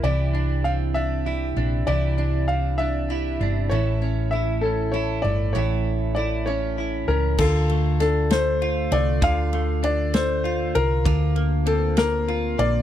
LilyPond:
<<
  \new Staff \with { instrumentName = "Grand piano" } { \time 6/8 \key d \minor \tempo 4. = 65 d''4 f''8 e''4. | d''4 f''8 e''4. | cis''4 e''8 a'8 cis''8 d''8 | cis''4 d''8 cis''4 bes'8 |
a'4 a'8 c''4 d''8 | f''4 d''8 c''4 bes'8~ | bes'8 r8 a'8 bes'4 d''8 | }
  \new Staff \with { instrumentName = "Clean electric guitar" } { \time 6/8 \key d \minor <c e'>8 d'4 d'8 e'8 d'8 | <c e'>8 d'4 d'8 e'8 d'8 | <a, e'>8 cis'8 e'8 cis'8 e'4 | <a, e'>4 e'8 cis'8 e'8 cis'8 |
<d f'>8 a8 d'8 a8 f'8 a8 | <d f'>8 a8 d'8 a8 f'4 | <d f'>8 bes8 c'8 bes8 f'8 bes8 | }
  \new Staff \with { instrumentName = "Steel-string acoustic guitar" } { \time 6/8 \key d \minor <e g'>8 d'8 c'8 d'8 g'8 c'8 | <e g'>8 d'8 c'8 d'8 g'8 c'8 | <e a'>8 cis'8 a4 a'8 a8 | <e a'>4 a8 cis'4. |
r2. | r2. | r2. | }
  \new Staff \with { instrumentName = "Fingered electric bass" } { \clef bass \time 6/8 \key d \minor c,2~ c,8 bes,,8 | c,2~ c,8 g,,8 | a,,2~ a,,8 g,,8 | a,,2~ a,,8 cis,8 |
d,2~ d,8 c,8 | d,2~ d,8 c,8 | d,2~ d,8 bes,,8 | }
  \new DrumStaff \with { instrumentName = "Drums" } \drummode { \time 6/8 r4. r4. | r4. r4. | r4. r4. | r4. r4. |
<cymc bd>8 cymr8 <cymr sn>8 <cymr sn>8 cymr8 cymr8 | <bd cymr>8 cymr8 cymr8 <cymr sn>8 cymr8 cymr8 | <bd cymr>8 cymr8 cymr8 <cymr sn>8 cymr8 cymr8 | }
>>